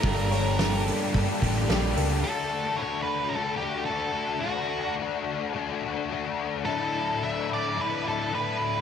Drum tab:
HH |oooooooo|--------|--------|--------|
SD |-oo---o-|--------|--------|--------|
BD |o---oo--|--------|--------|--------|